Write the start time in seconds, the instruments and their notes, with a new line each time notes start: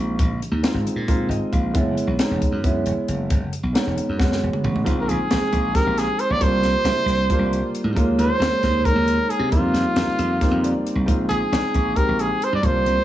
Already playing: slap bass A#1, grand piano G#3 C4 D#4 F4
0.19 slap bass A#1, kick, closed hi-hat
0.42 closed hi-hat
0.51 slap bass D#2
0.63 grand piano G#3 C4 D#4 F4, snare, closed hi-hat
0.74 slap bass G#1
0.87 closed hi-hat
0.96 slap bass A#2
1.08 grand piano G#3 C4 D#4 F4, kick, closed hi-hat
1.29 slap bass G#1, grand piano D#5, closed hi-hat
1.40 muted slap bass stroke
1.52 slap bass A#1, grand piano F5, kick, closed hi-hat
1.74 slap bass F#1, grand piano G#3 B3 C#4 E4, kick, closed hi-hat
1.97 closed hi-hat
2.07 slap bass B1
2.19 grand piano G#3 B3 C#4 D#4, snare, closed hi-hat
2.31 slap bass E1
2.42 kick, closed hi-hat
2.52 slap bass F#2
2.64 grand piano G#3 B3 C#4 E4, kick, closed hi-hat
2.86 slap bass E1, closed hi-hat
2.97 muted slap bass stroke
3.08 slap bass F#1, closed hi-hat
3.30 slap bass F#1, kick, closed hi-hat
3.53 closed hi-hat
3.63 slap bass B1
3.73 grand piano G#3 B3 C#4 D#4, snare, closed hi-hat
3.87 slap bass E1
3.98 closed hi-hat
4.09 slap bass F#2
4.18 grand piano G#3 B3 C#4 F#4, kick, snare
4.32 snare
4.43 slap bass E1
4.53 muted slap bass stroke, mid tom
4.64 slap bass A1, mid tom
4.76 floor tom
4.84 slap bass A#1, grand piano G#3 C4 D#4 F4, kick, closed hi-hat
5.01 trumpet A#4
5.09 slap bass A#1, trumpet G#4, closed hi-hat
5.29 slap bass A#1, grand piano G#3 C4 D#4 G#4, snare, closed hi-hat
5.43 muted slap bass stroke
5.53 slap bass A#1, kick, closed hi-hat
5.74 grand piano G#3 C4 D#4 G4, trumpet A#4, kick, snare, closed hi-hat
5.87 slap bass A#1
5.98 trumpet G#4, snare, closed hi-hat
6.19 trumpet C5, closed hi-hat
6.30 slap bass A#1, trumpet D5
6.39 slap bass C2, grand piano G3 A#3 D4 F4, trumpet C5, kick, closed hi-hat
6.63 slap bass C2, snare, closed hi-hat
6.84 slap bass C2, grand piano G3 A#3 D4 E4, snare, closed hi-hat
7.06 slap bass C2, snare, closed hi-hat
7.30 grand piano G3 A#3 D4 F4, kick, closed hi-hat
7.39 slap bass C2
7.53 closed hi-hat
7.75 closed hi-hat
7.84 slap bass A2
7.95 slap bass D#2, grand piano G#3 A#3 C#4 F4, kick, closed hi-hat
8.18 slap bass D#2, trumpet C5, closed hi-hat
8.39 slap bass D#2, grand piano G#3 A#3 C#4 G#4, snare, closed hi-hat
8.52 muted slap bass stroke
8.63 slap bass D#2, kick, snare, closed hi-hat
8.84 grand piano G#3 A#3 C#4 D#4, trumpet A#4, kick, closed hi-hat
8.95 slap bass D#2
9.08 closed hi-hat
9.30 trumpet G#4, closed hi-hat
9.39 slap bass C3
9.52 slap bass F2, grand piano G3 A#3 C4 D#4, trumpet F4, kick, closed hi-hat
9.73 slap bass F2, snare, closed hi-hat
9.96 slap bass F2, grand piano G3 A#3 C4 D#4, snare, closed hi-hat
10.07 muted slap bass stroke
10.19 slap bass F2, closed hi-hat
10.41 grand piano G3 A#3 C4 D#4, kick, snare, closed hi-hat
10.51 slap bass F2
10.64 grand piano D5, closed hi-hat
10.87 closed hi-hat
10.95 slap bass C2
11.06 slap bass A#1, grand piano G#3 C4 D#4 F4, kick, closed hi-hat
11.29 slap bass A#1, trumpet G#4, closed hi-hat
11.52 slap bass A#1, grand piano G#3 C4 D#4 G#4, snare, closed hi-hat
11.62 muted slap bass stroke
11.74 slap bass A#1, kick, closed hi-hat
11.96 grand piano G#3 C4 D#4 G4, trumpet A#4, kick, closed hi-hat
12.08 slap bass A#1
12.19 trumpet G#4, closed hi-hat
12.42 trumpet C5, closed hi-hat
12.53 slap bass G2, trumpet D5
12.62 slap bass C2, grand piano G3 A#3 D4 F4, trumpet C5, kick, closed hi-hat
12.86 slap bass C2, closed hi-hat